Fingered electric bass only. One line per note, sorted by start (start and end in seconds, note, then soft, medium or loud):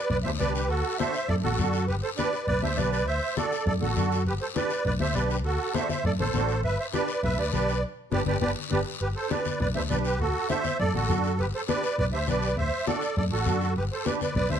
0.10 0.22 B1 medium
0.24 0.36 D2 medium
0.40 0.69 C2 medium
0.69 0.81 D2 loud
1.28 1.40 F#2 medium
1.43 1.55 A1 medium
1.58 1.89 F#2 medium
1.88 2.00 G1 medium
2.47 2.59 B1 medium
2.62 2.74 D2 medium
2.77 3.06 B1 medium
3.06 3.18 D2 loud
3.66 3.78 F#2 medium
3.81 3.93 A1 medium
3.96 4.26 F#2 medium
4.25 4.37 G1 medium
4.85 4.97 B1 medium
5.00 5.12 D2 medium
5.14 5.44 B1 medium
5.44 5.56 D2 medium
6.04 6.16 F#2 medium
6.18 6.30 A1 medium
6.33 6.64 A1 medium
6.63 6.75 G1 medium
7.23 7.35 B1 medium
7.37 7.49 D2 medium
7.52 7.82 B1 medium
8.11 8.23 G1 loud
8.26 8.37 G1 loud
8.40 8.52 G1 medium
8.71 8.82 G1 medium
9.00 9.13 G1 medium
9.60 9.72 B1 medium
9.75 9.87 D2 medium
9.90 10.20 B1 medium
10.20 10.32 D2 medium
10.79 10.91 F#2 medium
10.94 11.06 A1 medium
11.09 11.40 F#2 medium
11.39 11.50 G1 loud
11.98 12.10 B1 medium
12.12 12.25 D2 medium
12.27 12.57 B1 medium
12.57 12.69 D2 medium
13.17 13.29 F#2 medium
13.31 13.43 A1 medium
13.46 13.77 F#2 medium
13.76 13.88 G1 medium
14.34 14.47 B1 medium
14.50 14.60 D2 medium